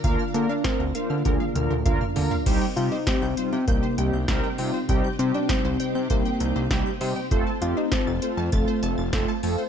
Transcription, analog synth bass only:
X:1
M:4/4
L:1/16
Q:1/4=99
K:Cm
V:1 name="Analog synth bass" clef=bass
D,, z D, z2 D,, z D, D,, z D,, D,, D,, z D, z | C,, z C, z2 C,, z C, C,, z C,, C,, C,, z C, z | C,, z C, z2 C,, z C, C,, z C,, C,, C,, z C, z | F,,, z F,, z2 F,,, z F,, F,,, z F,,, F,,, F,,, z F,, z |]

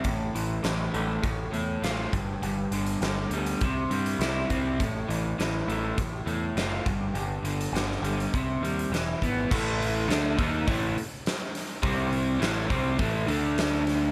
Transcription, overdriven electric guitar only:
X:1
M:4/4
L:1/8
Q:1/4=102
K:Am
V:1 name="Overdriven electric guitar" clef=bass
A,, E, E, A, A,, A, F G,, | G,, D, D, G, C, G, E C | A,, E, E, A, A,, A, ^E G,, | G,, D, D, G, C, G, E, B, |
[A,,E,A,]2 [D,A,D] [^D,_B,^D] [A,,E,A,] z3 | [C,G,C]2 [A,,E,A,] [C,G,C] [A,,E,A,] [D,A,D]3 |]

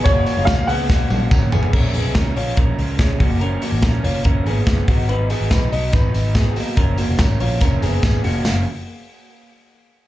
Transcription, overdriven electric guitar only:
X:1
M:4/4
L:1/8
Q:1/4=143
K:F#
V:1 name="Overdriven electric guitar" clef=bass
[F,,C,E,A,C] [E,A,C] [F,,C,E,A,C] [E,A,C] [C,E,A,C] [E,A,C] [F,,C,E,A,C] [E,A,C] | [A,,E,G,C] [E,G,C] [A,,E,G,C] [E,G,C] [A,,E,G,C] [E,G,C] [A,,E,G,C] [E,A,C] | [F,,C,E,A,C] [E,A,C] [F,,C,E,A,C] [E,A,C] [C,E,A,C] [E,A,C] [F,,C,E,A,C] [F,B,D] | [G,,D,F,B,D] [F,B,D] [G,,D,F,B,D] [F,B,D] [D,F,B,D] [F,B,D] [G,,D,F,B,D] [F,B,D] |
[F,,C,E,A,C] [E,A,C] [F,,C,E,A,C] [E,A,C] [C,E,A,C] [E,A,C] [F,,C,E,A,C] [E,A,C] | [F,,C,E,A,C] z6 z |]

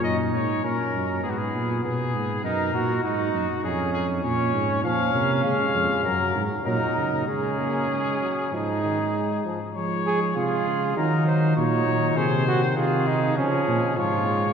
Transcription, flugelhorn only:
X:1
M:4/4
L:1/8
Q:1/4=100
K:F#
V:1 name="Flugelhorn"
D2 C2 B,2 B,2 | D F D2 C2 C2 | [K:Db] D4- D z E2 | D4 E3 z |
z A F2 E2 E2 | A G F E D2 F2 |]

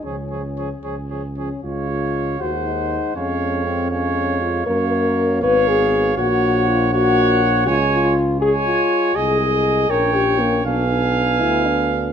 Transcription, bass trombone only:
X:1
M:6/8
L:1/8
Q:3/8=79
K:Db
V:1 name="Bass trombone" clef=bass
D,,3 D,,3 | D,,3 E,,3 | F,,6 | G,,3 A,,,3 |
B,,,6 | [K:Dblyd] D,,4- D,, z | C,,3 B,,,3 | =B,,,3 =D,,3 |]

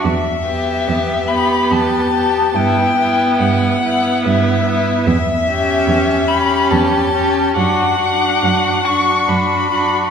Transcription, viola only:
X:1
M:3/4
L:1/8
Q:1/4=71
K:Edor
V:1 name="Viola"
z B,2 B,2 B, | B, B,2 B,2 B, | z C2 C2 C | D D2 D2 D |]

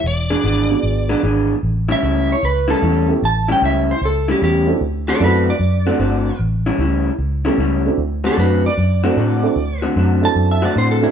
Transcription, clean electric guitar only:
X:1
M:4/4
L:1/8
Q:"Swing" 1/4=151
K:Amix
V:1 name="Clean electric guitar"
z [E,B,D^G] [E,B,DG] z2 [E,B,DG] [E,B,DG] z | z [A,,G,CE] [A,,G,CE] z2 [A,,G,CE] [A,,G,CE] z | z [A,,G,CE] [A,,G,CE] z2 [A,,G,CE] [A,,G,CE] z | z [D,A,=CF] [D,A,CF] z2 [D,A,CF] [D,A,CF] z |
z [A,,G,CE] [A,,G,CE] z2 [A,,G,CE] [A,,G,CE] z | z [D,A,=CF] [D,A,CF] z2 [D,A,CF] [D,A,CF] z | z [D,A,=CF] [D,A,CF] z2 [D,A,CF] [D,A,CF] z |]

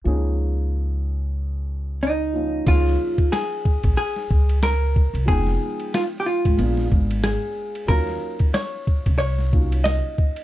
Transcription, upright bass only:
X:1
M:4/4
L:1/16
Q:"Swing 16ths" 1/4=92
K:Db
V:1 name="Upright bass" clef=bass
D,,16 | D,,2 z4 z B,,, z2 D,,4- D,, C,, | F,,,2 z4 z A,,, B,,,2 A,,,3 z3 | E,,2 z4 z C,,6 z3 |]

